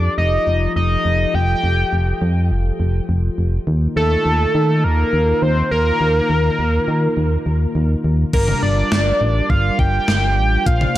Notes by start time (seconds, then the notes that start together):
Already playing: F3 F4 G4 A4 D5
0.18 F1 D#5
0.47 F1
0.76 F1 D#5
1.05 F1
1.34 F1 G5
1.64 F1
1.93 F1
2.22 F2
2.51 F1
2.80 F1
3.09 F1
3.38 F1
3.67 D#2 D#3 A#3 D#4 F4
3.96 D#2 A4
4.26 D#2
4.55 D#3
4.84 D#2 A#4
5.13 D#2
5.42 D#2 C5
5.71 D#2 A#4
6.01 D#2
6.30 D#2
6.59 D#2
6.88 D#3
7.17 D#2
7.46 D#2
7.75 D#2
8.04 D#2
8.33 G1 G3 D4 F4 A#4, kick, crash
8.48 mid tom
8.63 G1 D5
8.92 G1, snare
9.21 A1
9.50 G1 F5, kick
9.79 G1 G5, kick
10.08 G1, snare
10.37 A1
10.66 A#1 A#3 C5 D5 F5, kick, closed hi-hat
10.81 mid tom